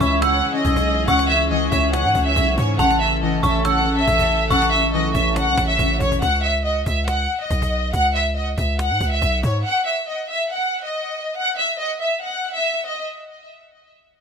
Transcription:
Already playing: grand piano C#3 E3, string section E3 G#3 C#4 G#4
0.00 808-style bass C#2, grand piano C#4, violin section E5, synth bell C#6, cajon bass
0.21 grand piano C#3, violin section F#5, synth bell E6, cajon slap
0.43 grand piano C#3, cajon slap
0.49 cajon slap
0.55 violin section D#5, cajon slap
0.60 cajon slap
0.64 808-style bass B1, grand piano C#3, cajon bass
0.76 cajon bass
1.08 808-style bass C#2, grand piano C#3, violin section F#5, synth bell C#6, cajon bass
1.19 cajon slap
1.29 grand piano C#3, violin section E5
1.40 cajon slap
1.51 grand piano E3, violin section D#5, cajon slap
1.71 808-style bass C#2, grand piano C#4, violin section E5, cajon bass
1.93 grand piano C#3, violin section F#5, cajon slap
2.05 808-style bass G#2
2.15 808-style bass C#2, grand piano C#3, cajon bass
2.26 violin section E5
2.36 808-style bass B1, grand piano C#3, cajon bass
2.51 cajon slap
2.58 808-style bass G#2, violin section C#5, cajon bass
2.79 808-style bass A1, grand piano C#3, string section A3 A4, violin section F#5, synth bell A5, cajon bass
2.90 cajon slap
3.00 grand piano C#3, violin section E5
3.22 grand piano E3, violin section D#5, cajon slap
3.43 808-style bass A1, grand piano C#4, violin section E5, synth bell C#6, cajon bass
3.65 grand piano C#3, violin section F#5, synth bell E6, cajon slap
3.86 grand piano C#3
3.92 cajon slap
3.97 violin section E5, cajon slap
4.03 cajon slap
4.08 808-style bass A1, grand piano C#3, cajon bass
4.19 cajon bass
4.50 808-style bass A1, grand piano C#3, violin section F#5, synth bell C#6, cajon bass
4.62 cajon slap
4.72 grand piano C#3, violin section E5, cajon slap
4.83 cajon slap
4.88 cajon slap
4.93 808-style bass B1, grand piano E3, violin section D#5, cajon slap
5.15 808-style bass A1, grand piano C#4, violin section E5, cajon bass
5.36 grand piano C#3, violin section F#5, cajon slap
5.48 808-style bass B1
5.57 808-style bass A1, grand piano C#3, cajon bass, cajon slap
5.65 cajon slap
5.69 violin section E5, cajon slap
5.79 808-style bass A1, grand piano C#3, cajon bass
5.93 cajon slap
6.00 808-style bass A1, violin section C#5, cajon bass
6.08 cajon slap
6.12 cajon bass, cajon slap
6.22 808-style bass C#2, violin section F#5, cajon bass
6.43 violin section E5
6.65 violin section D#5, cajon slap
6.86 808-style bass C#2, violin section E5, cajon bass
7.07 violin section F#5, cajon slap
7.29 cajon slap
7.35 cajon slap
7.40 violin section D#5, cajon slap
7.46 cajon slap
7.51 808-style bass B1, cajon bass
7.62 cajon bass
7.72 cajon slap
7.93 808-style bass C#2, violin section F#5, cajon bass
8.15 violin section E5
8.26 cajon slap
8.36 violin section D#5, cajon slap
8.58 808-style bass C#2, violin section E5, cajon bass
8.79 violin section F#5, cajon slap
8.90 808-style bass G#2
9.01 808-style bass C#2, cajon bass
9.12 violin section E5
9.22 808-style bass B1, cajon bass
9.36 cajon slap
9.43 808-style bass G#2, violin section C#5, cajon bass
9.65 violin section F#5
9.86 violin section E5
10.08 violin section D#5
10.29 violin section E5
10.51 violin section F#5
10.83 violin section D#5
11.36 violin section F#5
11.58 violin section E5
11.79 violin section D#5
12.01 violin section E5
12.22 violin section F#5
12.55 violin section E5
12.86 violin section D#5

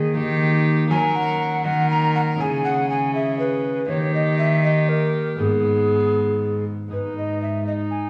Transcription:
Already playing: cello D#3, harp D#3 G#3 A#3 D#4 G#4, recorder G#4, viola G#4
0.13 cello D#3, harp D#3 A#3 D#4 G4, viola G4
0.86 harp A#3 C#4 F#4
0.90 harp F#3, cello F#3, viola A#4, recorder G#5
1.15 recorder F#5
1.64 harp D#3, cello D#3, viola A#4, recorder F#5
1.90 recorder A#5
2.15 recorder F#5
2.35 harp C#3 G#3 C#4 E4, cello C#3
2.40 viola G#4, recorder G#5
2.65 recorder F#5
2.90 recorder G#5
3.14 viola G#4, recorder E5
3.39 recorder B4
3.86 harp D#3 A#3 D#4, cello D#3, viola G4, recorder C#5
4.14 recorder D#5
4.39 recorder E5
4.64 viola G4, recorder D#5
4.89 recorder A#4
5.36 cello G#2, harp G#2 G#3 B3 D#4, recorder G#4
5.40 viola B3
6.88 cello G#2, harp G#2 B3 D#4 G#4
6.93 viola D#4, recorder B4
7.18 recorder D#5
7.42 recorder E5
7.67 viola D#4, recorder D#5
7.91 recorder G#5

